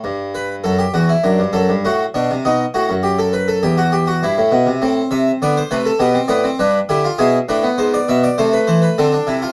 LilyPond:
<<
  \new Staff \with { instrumentName = "Harpsichord" } { \time 4/4 \key a \minor \tempo 4 = 101 << { r1 | r1 | r8 e''8 d''16 c''16 b'16 a'16 g'8 d''8 b'8 g'8 | gis'8 b'8 c''16 d''16 e''16 d''16 c''16 b'16 c''16 b'16 a'4 | } \\ { r8 b'8 a'16 g'16 fis'16 e'16 d'8 a'8 fis'8 d'8 | dis'8 fis'8 g'16 a'16 b'16 a'16 g'16 fis'16 g'16 fis'16 e'4 | c'4 b8 a8 b16 c'16 b16 c'16 d'8 e'16 f'16 | e'8 d'16 b4~ b16 a4 c'16 d'16 e'16 f'16 | } >> }
  \new Staff \with { instrumentName = "Harpsichord" } { \clef bass \time 4/4 \key a \minor g,4 fis,8 e,8 fis,16 g,16 fis,16 g,16 a,8 b,16 c16 | b,8 a,16 fis,4~ fis,16 e,4 g,16 a,16 b,16 c16 | a,8 c8 d8 c8 b,8 a,8 g,8 d8 | b,8 a,8 gis,8 b,8 c8 e8 d8 c8 | }
>>